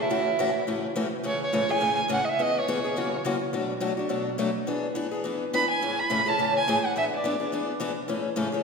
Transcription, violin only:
0.01 E4
1.26 C#5
1.43 C#5
1.71 G#5
2.12 F#5
2.25 D#5
2.29 E5
2.42 D#5
2.59 C#5
5.54 B5
5.71 G#5
5.99 B5
6.28 A5
6.56 G#5
6.86 F#5
6.98 E5
7.14 D5

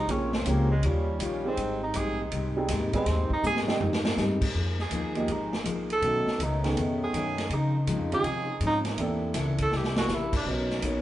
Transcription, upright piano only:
0.09 F3 A#3 C4 C#4 G#4
0.47 F3 A#3 C4 C#4 G4
1.45 G#3 C4 D#4 G4 G#4
2.57 G3 G#3 C4 D#4 G#4
2.93 G3 G#3 C4 D#4 G#4
3.67 G3 G#3 C4 D#4 G#4
5.16 F3 G#3 A#3 D#4 G4
6.02 D#3 A3 B3 C#4 F#4
6.64 D#3 A3 B3 C#4 G#4
8.12 D#3 G#3 C4 C#4 F4
8.98 E3 A#3 C4 D4 A4
10.46 F#3 B3 C#4 D#4 A#4

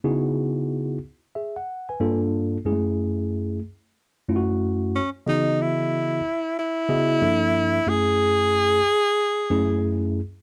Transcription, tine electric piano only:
0.04 C#3 B3 D#4 E4 F#4 G#4
1.35 G#4 E5
1.56 F#5
1.89 B4 G#5
2.00 G2 A#3 D4 F4 A4
2.65 F#2 G#3 C#4 E4 G#4
2.72 A3
4.28 F#2 A3 C#4 E4 F4
4.36 F#4
5.27 C#3 E3 B3 F#4 G#4 D#5
6.89 C#3 B3 E4 F#4 G#4 D#5
7.21 G2 F3 A#3 D4 A4
7.86 F#2 A3 C#4 E4 G#4
9.50 F#2 A3 C#4 E4 G#4

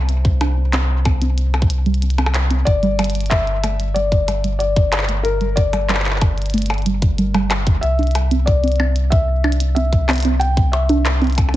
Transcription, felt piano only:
Already playing: C5
2.65 D5
3.30 E5
3.94 D5
4.59 D5
5.23 A#4
5.56 D5
7.81 E5
8.46 D5
9.10 E5
9.75 E5
10.40 G5
10.72 E5

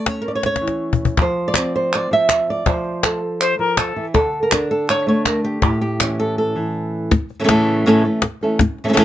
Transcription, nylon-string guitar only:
Already playing: A3
0.06 C#4 C#5
0.22 A#4
0.28 D5
0.35 C#5
0.46 C#5
0.61 E3
1.18 F3 C5
1.48 D5
1.56 C4
1.76 C5
1.95 D5
2.11 F3 E5
2.50 D5
2.67 F3 C5
3.05 A4
3.59 F3
3.78 F3
3.96 E3
4.14 D3 A4
4.43 A#4
4.52 D4
4.71 A4
4.90 C#5
5.07 A3 C#5
5.26 A#4
5.44 G4
5.62 A2 G4
5.81 G4
6.01 E3 C#4
6.20 A4
6.38 A4
6.56 E3
7.11 muted nylon-string guitar stroke
7.40 C#3 E3 A3 C#4 A4
7.44 C#3 E3 A3 C#4 A4
7.48 A2 C#3 E3 A3 C#4 A4
7.86 A2 C#3 E3 A3 C#4 A4
8.05 E3 A3 C#4 A4
8.23 muted nylon-string guitar stroke
8.43 E3 A3 C#4 A4
8.61 muted nylon-string guitar stroke
8.84 C#3 E3 A3 C#4 A4
8.88 C#3 E3 A3 C#4 A4
8.93 C#3 E3 A3 C#4 A4
8.97 A2 C#3 E3 A3 C#4 A4

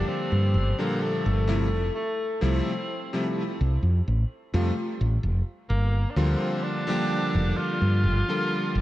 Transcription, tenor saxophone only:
0.08 C4
0.79 A#3
1.02 A3
1.95 A3
2.42 C4
5.70 A#3
6.10 D4
6.17 C4
6.63 D4
7.57 F4

